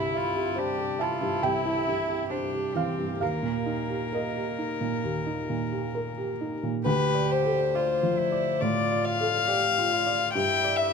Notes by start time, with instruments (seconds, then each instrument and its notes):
Already playing: felt piano C2 G2 B5, cello E4, violin E4
0.14 cello F4, felt piano E5
0.36 felt piano G4
0.56 violin D4, cello G4, felt piano C5
0.78 felt piano G4
0.99 violin E4, cello F4, felt piano E5 A5
1.21 felt piano G2
1.43 felt piano C2 G5, cello E4
1.65 felt piano E4
1.87 felt piano G2
2.09 felt piano G4
2.30 cello D4, violin G4, felt piano C5
2.54 felt piano G4
2.75 felt piano E3 F5, cello C4
2.98 felt piano G2
3.20 felt piano D#2 F5, cello A#3, violin A#4
3.43 felt piano A#2
3.66 felt piano D#4
3.89 felt piano G4
4.13 felt piano A#4 D#5
4.35 felt piano G4
4.58 felt piano D#4
4.81 felt piano A#2
5.04 felt piano D#2
5.26 felt piano D#4
5.50 felt piano A#2
5.72 felt piano G4
5.95 felt piano A#4
6.18 felt piano G4
6.41 felt piano D#4
6.63 felt piano A#2
6.85 felt piano D2, cello G4, violin B4
7.15 felt piano D5
7.31 violin C5
7.45 felt piano A4
7.75 cello F4, felt piano D5
8.03 felt piano F3
8.19 cello E4
8.32 felt piano D5
8.61 felt piano A2, cello F4, violin D5
8.92 felt piano D5
9.05 violin F5
9.21 felt piano A4
9.47 cello G4, felt piano D5
9.78 felt piano F4
9.91 cello F4
10.06 felt piano D5
10.34 felt piano G2, cello E4, violin G5
10.64 felt piano D5
10.77 violin E5